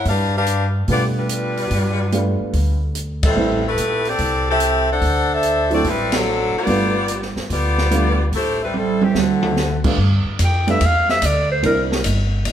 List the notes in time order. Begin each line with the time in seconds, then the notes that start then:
0.05 G2 D4 G4 B4 F5, kick, open hi-hat
0.37 D4 G4 B4 F5
0.46 closed hi-hat
0.88 B2 G3 A3 B3 D4 F4 G4 D5, kick, open hi-hat
1.18 G3 D4 F4 B4
1.29 closed hi-hat
1.57 open hi-hat
1.71 G2, kick, open hi-hat
2.12 G3 A3 B3 D4 F4, closed hi-hat
2.40 muted upright bass stroke
2.53 D2, kick, open hi-hat
2.95 closed hi-hat
3.23 G3 C4 E4 A4, kick, ride
3.36 A1 G3 A3 B3 C4 E4
3.67 A3 E4 G4 B4
3.77 A#1, closed hi-hat
4.05 C4 G4 A4 D5, open hi-hat
4.18 C2, kick, open hi-hat
4.50 C4 G4 A4 E5
4.60 closed hi-hat
4.91 D4 A4 C5 F#5
5.01 D2, kick, open hi-hat
5.32 D4 A4 C5 E5
5.43 closed hi-hat
5.70 F#3 A3 C4 D4 E4 F#4 A4 D5, open hi-hat
5.84 A1 G3, kick, open hi-hat
5.88 C4 E4 B4
6.12 snare, ride
6.16 F#3 C4 D4 A4
6.53 muted upright bass stroke
6.57 B3 F4 G4 D5
6.66 G1 G3 A3 B3 D4 F4, kick, open hi-hat
7.08 closed hi-hat
7.22 snare
7.36 muted upright bass stroke, snare
7.50 D2 B3 F4 G4 D5, kick, open hi-hat
7.78 snare
7.91 G3 A3 B3 D4 F4, closed hi-hat
8.32 A1 A3 E4 G4 C5, kick, open hi-hat
8.63 G3 C4 E4 B4
8.74 G3 C4 E4 A4, high tom
9.01 E3 A3 C4 G4, high tom
9.14 D2 D3 A3 C4 F#4, snare
9.43 mid tom
9.57 snare
9.84 G3 A3 B3 D4 F4, kick, crash
9.97 G2, kick
10.24 muted upright bass stroke
10.39 F2, kick, hi-hat pedal, ride
10.44 G5
10.67 G3 A3 B3 D4 F4 E5, ride
10.81 E2, kick, ride
10.86 F5
11.09 E5, snare
11.22 D2 D5, kick, hi-hat pedal, ride
11.52 C5
11.63 C2 G3 A#3 C4 D4 E4 A#4, kick, ride
11.92 snare
12.04 G1, kick, hi-hat pedal, ride
12.45 A1, kick, ride